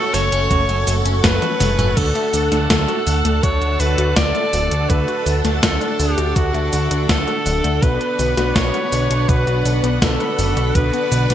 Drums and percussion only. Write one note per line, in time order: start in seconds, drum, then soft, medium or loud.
0.14 open hi-hat medium
0.14 cabasa medium
0.32 closed hi-hat medium
0.32 cabasa soft
0.51 kick loud
0.51 closed hi-hat medium
0.51 cabasa soft
0.69 closed hi-hat soft
0.69 cabasa soft
0.87 open hi-hat medium
0.87 cabasa medium
1.06 closed hi-hat medium
1.06 cabasa soft
1.24 kick loud
1.24 snare loud
1.24 closed hi-hat medium
1.24 cabasa soft
1.42 closed hi-hat soft
1.42 high tom medium
1.42 cabasa soft
1.60 open hi-hat medium
1.60 mid tom medium
1.60 cabasa medium
1.79 closed hi-hat medium
1.79 mid tom medium
1.79 cabasa soft
1.97 kick loud
1.97 closed hi-hat medium
1.97 crash medium
1.97 cabasa soft
2.15 closed hi-hat soft
2.15 cabasa soft
2.33 open hi-hat medium
2.33 cabasa medium
2.52 snare soft
2.52 closed hi-hat medium
2.52 cabasa soft
2.70 kick loud
2.70 snare loud
2.70 closed hi-hat medium
2.70 cabasa soft
2.88 closed hi-hat soft
2.88 cabasa soft
3.07 open hi-hat medium
3.07 cabasa medium
3.25 closed hi-hat medium
3.25 cabasa soft
3.43 kick loud
3.43 closed hi-hat medium
3.43 cabasa soft
3.62 closed hi-hat soft
3.62 cabasa soft
3.80 open hi-hat medium
3.80 cabasa medium
3.98 closed hi-hat medium
3.98 cabasa soft
4.16 kick loud
4.16 snare loud
4.16 closed hi-hat medium
4.16 cabasa soft
4.35 closed hi-hat soft
4.35 cabasa soft
4.53 open hi-hat medium
4.53 cabasa medium
4.71 closed hi-hat medium
4.71 cabasa soft
4.90 kick loud
4.90 closed hi-hat medium
4.90 cabasa soft
5.08 closed hi-hat soft
5.08 cabasa soft
5.26 open hi-hat medium
5.26 cabasa medium
5.45 snare soft
5.45 closed hi-hat medium
5.45 cabasa soft
5.63 kick loud
5.63 snare loud
5.63 closed hi-hat medium
5.63 cabasa soft
5.81 closed hi-hat soft
5.81 cabasa soft
6.00 open hi-hat medium
6.00 cabasa medium
6.18 closed hi-hat medium
6.18 cabasa soft
6.36 kick loud
6.36 closed hi-hat medium
6.36 cabasa soft
6.54 closed hi-hat soft
6.54 cabasa soft
6.73 open hi-hat medium
6.73 cabasa medium
6.91 closed hi-hat medium
6.91 cabasa soft
7.09 kick loud
7.09 snare loud
7.09 closed hi-hat medium
7.09 cabasa soft
7.28 closed hi-hat soft
7.28 cabasa soft
7.46 open hi-hat medium
7.46 cabasa medium
7.64 closed hi-hat medium
7.64 cabasa soft
7.82 kick loud
7.82 closed hi-hat medium
7.82 cabasa soft
8.01 closed hi-hat soft
8.01 cabasa soft
8.19 open hi-hat medium
8.19 cabasa medium
8.37 snare soft
8.37 closed hi-hat medium
8.37 cabasa soft
8.56 kick loud
8.56 snare loud
8.56 closed hi-hat medium
8.56 cabasa soft
8.74 closed hi-hat soft
8.74 cabasa soft
8.92 open hi-hat medium
8.92 cabasa medium
9.11 closed hi-hat medium
9.11 cabasa soft
9.29 kick loud
9.29 closed hi-hat medium
9.29 cabasa soft
9.47 closed hi-hat soft
9.47 cabasa soft
9.66 open hi-hat medium
9.66 cabasa medium
9.84 closed hi-hat medium
9.84 cabasa soft
10.02 kick loud
10.02 snare loud
10.02 closed hi-hat medium
10.02 cabasa soft
10.20 closed hi-hat soft
10.20 cabasa soft
10.39 open hi-hat medium
10.39 cabasa medium
10.57 closed hi-hat medium
10.57 cabasa soft
10.75 kick loud
10.75 closed hi-hat medium
10.75 cabasa soft
10.93 closed hi-hat soft
10.93 cabasa soft
11.12 open hi-hat medium
11.12 cabasa medium
11.30 snare soft
11.30 closed hi-hat medium
11.30 cabasa soft